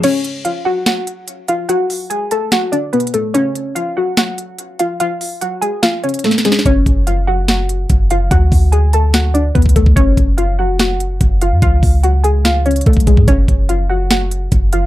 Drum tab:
CC |x-----------------------------------------------------------------------------------------------|------------------------------------------------------------------------------------------------|------------------------------------------------------------------------------------------------|------------------------------------------------------------------------------------------------|
HH |x-----------x-----------x-----------------------x-----------x-----------x-----------x-----------|x-----------o-----------x-----------x-----------x-----------x-----------x---x---x---x-----------|x-----------x-----------x-----------------------x-----------x-----------x-----------x-----------|x-----------o-----------x-----------x-----------x-----------x--x--x--x--x---x---x---x-----------|
SD |------------------------------------------------o-----------------------------------------------|------------------------------------------------o-----------------------------------------------|------------------------------------------------o-----------------------------------------------|------------------------------------------------o-----------------------o---o---o---o---o---o---|
BD |------------------------------------------------------------------------------------------------|------------------------------------------------------------------------------------------------|------------------------------------------------------------------------------------------------|------------------------------------------------------------------------------------------------|

CC |------------------------------------------------------------------------------------------------|------------------------------------------------------------------------------------------------|------------------------------------------------------------------------------------------------|------------------------------------------------------------------------------------------------|
HH |x-----------x-----------x-----------------------x-----------x-----------x-----------x-----------|x-----------o-----------x-----------x-----------x-----------x-----------x---x---x---x-----------|x-----------x-----------x-----------------------x-----------x-----------x-----------x-----------|x-----------o-----------x-----------x-----------x-----------x--x--x--x--x---x---x---x-----------|
SD |------------------------------------------------o-----------------------------------------------|------------------------------------------------o-----------------------------------------------|------------------------------------------------o-----------------------------------------------|------------------------------------------------o-----------------------------------------------|
BD |o-----------o-----------------------------------------------------------o-----------------------|o-----------o-----------------------------------------------------------o-----o-----o-----o-----|o-----------o-----------------------------------------------------------o-----------------------|o-----------o-----------------------------------------------------------o-----o-----o-----o-----|

CC |------------------------------------------------------------------------------------------------|
HH |x-----------x-----------x-----------------------x-----------x-----------x-----------x-----------|
SD |------------------------------------------------o-----------------------------------------------|
BD |o-----------o-----------------------------------------------------------o-----------------------|